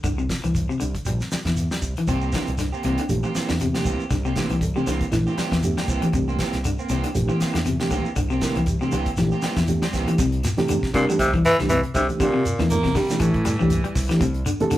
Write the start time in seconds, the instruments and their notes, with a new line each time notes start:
0.04 fingered electric bass C2, clean electric guitar D3, kick, closed hi-hat, shekere
0.18 clean electric guitar C3, shekere
0.29 kick, snare, closed hi-hat, shekere
0.44 fingered electric bass C2, clean electric guitar E3, closed hi-hat, shekere
0.55 kick, closed hi-hat, shekere
0.69 clean electric guitar C3, shekere
0.80 fingered electric bass C2, clean electric guitar D3, closed hi-hat, shekere
0.95 kick, closed hi-hat, shekere
1.05 fingered electric bass A#1, clean electric guitar G3, closed hi-hat, shekere
1.20 snare, shekere
1.31 clean electric guitar G3, muted fingered electric bass stroke, snare, closed hi-hat, shekere
1.45 fingered electric bass E2, clean electric guitar E3, kick, snare, closed hi-hat, shekere
1.56 closed hi-hat, shekere
1.71 clean electric guitar G3, snare, shekere
1.82 fingered electric bass C2, kick, closed hi-hat, shekere
1.96 clean electric guitar E3, closed hi-hat, shekere
2.07 fingered electric bass C2, clean electric guitar C3 A#3 C4 G4, muted clean electric guitar stroke, kick, closed hi-hat, shekere
2.21 clean electric guitar A#3 C4 G4, shekere
2.32 clean electric guitar D3 E3 A#3 C4 G4, kick, snare, closed hi-hat, shekere
2.46 fingered electric bass C2, closed hi-hat, shekere
2.58 clean electric guitar D3, snare, closed hi-hat, shekere
2.72 clean electric guitar A#3 C4 G4, shekere
2.83 fingered electric bass C2, clean electric guitar C3 E3 A#3 C4 G4, closed hi-hat, shekere
2.98 clean electric guitar D3, closed hi-hat, shekere
3.09 fingered electric bass A#1, reed electric piano E3 A3 D4 G4, closed hi-hat, shekere
3.23 clean electric guitar A#3 C4 G4, muted clean electric guitar stroke, shekere
3.35 clean electric guitar E3 A#3 C4 G4, muted fingered electric bass stroke, snare, closed hi-hat, shekere
3.49 fingered electric bass E2, clean electric guitar D3, snare, closed hi-hat, shekere
3.59 clean electric guitar C3, reed electric piano D4 G4, closed hi-hat, shekere
3.73 reed electric piano E3 A3 D4 G4, clean electric guitar A#3 C4 G4, snare, shekere
3.85 fingered electric bass C2, clean electric guitar E3 A#3 C4 G4, kick, closed hi-hat, shekere
4.00 shekere
4.10 fingered electric bass C2, clean electric guitar D3, kick, snare, closed hi-hat, shekere
4.25 clean electric guitar C3 A#3 C4 G4, shekere
4.36 reed electric piano E3 A3 D4 G4, clean electric guitar E3 A#3 C4 G4, kick, snare, closed hi-hat, shekere
4.50 fingered electric bass C2, clean electric guitar E3, closed hi-hat, shekere
4.61 reed electric piano D4 A4, kick, closed hi-hat, shekere
4.75 clean electric guitar C3 A#3 C4 G4, reed electric piano E3 A3 D4 G4, shekere
4.87 fingered electric bass C2, clean electric guitar D3 E3 A#3 C4 G4, snare, closed hi-hat, shekere
5.01 kick, closed hi-hat, shekere
5.11 fingered electric bass A#1, reed electric piano E3 A3 D4 E4, clean electric guitar E3, snare, closed hi-hat, shekere
5.27 clean electric guitar A#3 C4 G4, shekere
5.37 clean electric guitar E3 G3 A#3 C4 G4, muted fingered electric bass stroke, snare, closed hi-hat, shekere
5.52 fingered electric bass E2, clean electric guitar E3, kick, snare, closed hi-hat, shekere
5.63 reed electric piano E3 A3 D4 G4, closed hi-hat, shekere
5.77 clean electric guitar G3 A#3 C4 G4, snare, shekere
5.88 fingered electric bass C2, clean electric guitar E3 A#3 C4 G4, kick, closed hi-hat, shekere
6.02 clean electric guitar E3, reed electric piano E3 A3 D4 G4, closed hi-hat, shekere
6.13 fingered electric bass C2, clean electric guitar C3, kick, closed hi-hat, shekere
6.28 clean electric guitar A#3 C4, muted clean electric guitar stroke, shekere
6.39 clean electric guitar E3 A#3 C4 G4, kick, snare, closed hi-hat, shekere
6.53 fingered electric bass C2, snare, closed hi-hat, shekere
6.64 clean electric guitar D3, closed hi-hat, shekere
6.79 clean electric guitar A#3 C4, shekere
6.89 fingered electric bass C2, clean electric guitar C3 E3 A#3 C4 G4, closed hi-hat, shekere
7.04 clean electric guitar D3, closed hi-hat, shekere
7.14 fingered electric bass A#1, reed electric piano E3 A3 D4 G4, closed hi-hat, shekere
7.29 clean electric guitar E3 A#3 C4 G4, shekere
7.40 clean electric guitar E3 A#3 C4 G4, muted fingered electric bass stroke, snare, closed hi-hat, shekere
7.54 fingered electric bass E2, clean electric guitar D3, snare, closed hi-hat, shekere
7.66 clean electric guitar C3, reed electric piano D4 G4, closed hi-hat, shekere
7.80 reed electric piano E3 A3 D4 G4, clean electric guitar A#3 C4 G4, snare, shekere
7.90 fingered electric bass C2, clean electric guitar D3 E3 A#3 C4 G4, kick, closed hi-hat, shekere
8.05 muted fingered electric bass stroke, shekere
8.16 fingered electric bass C2, clean electric guitar D3, kick, closed hi-hat, shekere
8.30 clean electric guitar C3 A#3 C4 G4, shekere
8.41 clean electric guitar E3 A#3 C4 G4, reed electric piano E3 A3 D4 A#4, kick, snare, closed hi-hat, shekere
8.56 fingered electric bass C2, clean electric guitar E3, closed hi-hat, shekere
8.66 reed electric piano D4 G4, kick, closed hi-hat, shekere
8.81 clean electric guitar C3 A#3 C4 G4, reed electric piano E3 A3 D4 G4, shekere
8.92 fingered electric bass C2, clean electric guitar D3 E3 A#3 C4 G4, closed hi-hat, shekere
9.06 kick, closed hi-hat, shekere
9.17 fingered electric bass A#1, reed electric piano E3 A3 D4 G4, clean electric guitar E3, snare, closed hi-hat, shekere
9.31 clean electric guitar A#3 C4 G4, shekere
9.42 clean electric guitar E3 G3 A#3 C4 G4, muted fingered electric bass stroke, snare, closed hi-hat, shekere
9.56 fingered electric bass E2, clean electric guitar E3, kick, snare, closed hi-hat, shekere
9.67 reed electric piano E3 A3 D4 G4, closed hi-hat, shekere
9.82 clean electric guitar G3 C4 G4, snare, shekere
9.93 fingered electric bass C2, clean electric guitar E3 A#3 C4 G4, kick, snare, closed hi-hat, shekere
10.07 reed electric piano E3 A3 D4 G4, clean electric guitar E3, closed hi-hat, shekere
10.18 fingered electric bass C2, clean electric guitar C3, kick, closed hi-hat, shekere
10.32 closed hi-hat
10.43 clean electric guitar A#2, snare, closed hi-hat, shekere
10.57 fingered electric bass C3, reed electric piano E3 A3 D4 G4, snare, closed hi-hat, shekere
10.68 clean electric guitar D3, closed hi-hat, shekere
10.83 kick, snare
10.94 fingered electric bass G2, tenor saxophone A#2, clean electric guitar C3, kick, closed hi-hat, shekere
11.09 clean electric guitar D3, reed electric piano E3 A3 D4 G4, shekere
11.19 fingered electric bass C2, tenor saxophone C3, kick, closed hi-hat, shekere
11.34 clean electric guitar E3, kick, closed hi-hat
11.45 tenor saxophone E3, snare, closed hi-hat, shekere
11.59 fingered electric bass C2, clean electric guitar D3, reed electric piano E3 A3 D4 G4, snare, shekere
11.69 clean electric guitar C3, tenor saxophone E3, closed hi-hat, shekere
11.83 closed hi-hat
11.94 fingered electric bass C2, tenor saxophone C3, clean electric guitar D3, kick, closed hi-hat, shekere
12.08 reed electric piano E3 A3 D4 G4, closed hi-hat, shekere
12.20 tenor saxophone A#2, fingered electric bass C3, clean electric guitar D3, kick, closed hi-hat, shekere
12.34 clean electric guitar C3
12.45 closed hi-hat, shekere
12.59 fingered electric bass E2, reed electric piano E3 A3 D4 E4, clean electric guitar E3, snare, closed hi-hat, shekere
12.70 baritone saxophone A#3, closed hi-hat, shekere
12.83 clean electric guitar C3, kick, snare
12.95 fingered electric bass C3, clean electric guitar D3, baritone saxophone G3, kick, snare, open hi-hat, shekere
13.09 reed electric piano E3 A3 D4 G4, snare, closed hi-hat, shekere
13.20 fingered electric bass A2, clean electric guitar E3, baritone saxophone E3, kick, closed hi-hat, shekere
13.34 kick, closed hi-hat
13.45 clean electric guitar G3, snare, closed hi-hat, shekere
13.59 fingered electric bass C2, clean electric guitar E3, reed electric piano E3 A3 D4 G4, shekere
13.70 closed hi-hat, shekere
13.84 clean electric guitar G3, muted fingered electric bass stroke, closed hi-hat
13.95 fingered electric bass C2, kick, snare, open hi-hat, shekere
14.09 clean electric guitar E3, reed electric piano E3 A3 D4 G4, snare, closed hi-hat, shekere
14.20 fingered electric bass C2, clean electric guitar C3, kick, closed hi-hat, shekere
14.34 closed hi-hat
14.46 clean electric guitar D3, closed hi-hat, shekere
14.60 fingered electric bass C3, reed electric piano E3 A3 D4 A4, closed hi-hat, shekere
14.71 clean electric guitar D3, closed hi-hat, shekere